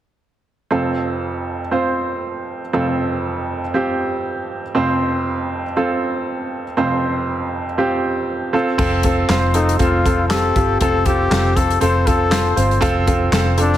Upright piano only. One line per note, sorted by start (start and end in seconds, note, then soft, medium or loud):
0.71 2.69 F1 medium
0.71 2.69 F2 soft
0.71 1.58 C4 medium
0.71 1.59 F4 medium
0.71 1.59 A4 medium
1.71 2.59 C4 medium
1.71 2.60 F4 medium
1.71 2.60 C5 medium
2.73 4.71 F1 medium
2.73 4.71 F2 medium
2.73 3.61 C4 medium
2.73 3.61 F4 medium
2.73 3.61 A4 medium
3.74 4.62 C4 medium
3.74 4.62 F4 soft
3.74 4.62 G4 medium
4.75 6.73 F1 soft
4.75 6.73 F2 medium
4.75 5.62 C4 medium
4.75 5.63 F4 medium
4.75 5.63 C5 medium
5.76 6.64 C4 medium
5.76 6.64 F4 medium
5.76 6.64 A4 medium
6.77 8.50 F1 medium
6.77 8.50 F2 medium
6.77 7.64 C4 medium
6.77 7.65 F4 medium
6.77 7.65 C5 medium
7.78 8.52 C4 medium
7.78 8.52 F4 medium
7.78 8.54 G4 medium
8.53 8.75 C4 medium
8.53 8.76 F4 medium
8.53 8.76 A4 medium
8.78 9.01 C4 medium
8.78 9.01 F4 medium
8.78 9.01 A4 loud
9.04 9.26 C4 medium
9.04 9.26 F4 medium
9.04 9.26 A4 medium
9.29 9.51 C4 medium
9.29 9.52 F4 medium
9.29 9.52 C5 medium
9.54 9.76 C4 medium
9.54 9.77 F4 soft
9.54 9.77 A4 medium
9.79 10.02 C4 medium
9.79 10.02 F4 medium
9.79 10.02 A4 medium
10.05 10.27 C4 medium
10.05 10.27 F4 medium
10.05 10.27 A4 medium
10.31 10.52 C4 medium
10.31 10.53 F4 medium
10.31 10.53 G4 medium
10.56 10.78 C4 medium
10.56 10.78 F4 medium
10.56 10.78 G4 medium
10.81 11.03 C4 medium
10.81 11.03 F4 medium
10.81 11.03 A4 medium
11.06 11.28 C4 medium
11.06 11.28 F4 medium
11.06 11.28 A4 medium
11.31 11.53 C4 medium
11.31 11.53 F4 medium
11.31 11.53 A4 medium
11.56 11.78 C4 medium
11.56 11.79 F4 soft
11.56 11.79 A4 medium
11.81 12.03 C4 medium
11.81 12.04 F4 medium
11.81 12.04 A4 medium
12.07 12.29 C4 medium
12.07 12.29 F4 medium
12.07 12.29 A4 medium
12.31 12.53 C4 medium
12.31 12.53 F4 medium
12.31 12.54 C5 medium
12.56 12.79 C4 medium
12.56 12.79 F4 medium
12.56 12.79 C5 medium
12.81 13.04 C4 medium
12.81 13.04 F4 medium
12.81 13.04 A4 loud
13.07 13.29 C4 medium
13.07 13.29 F4 medium
13.07 13.30 A4 medium
13.32 13.55 C4 medium
13.32 13.55 F4 medium
13.32 13.55 A4 medium
13.58 13.78 C4 medium
13.58 13.78 F4 soft
13.58 13.78 A4 medium